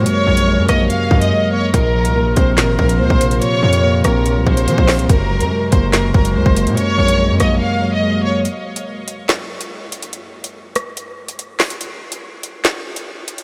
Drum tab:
HH |x--x--x-x--x----|x--x--x-x--x--xx|x--x--x-x--xx-ox|x--x--x-x--x--xx|
CP |----------------|--------x-------|--------------x-|--------x-------|
SD |------r---------|--------o-------|------r-------o-|--------o-------|
BD |----------o-----|o-----o---o--o--|----------o--o--|o-----o---o--o--|

HH |x--x--x---------|x--x--x-x--x--xx|x--x--x-x--xx-ox|x--x--x-x--x--xx|
CP |----------------|--------x-------|--------------x-|--------x-------|
SD |------r---------|--------o-------|------r-------o-|--------o-------|
BD |----------------|----------------|----------------|----------------|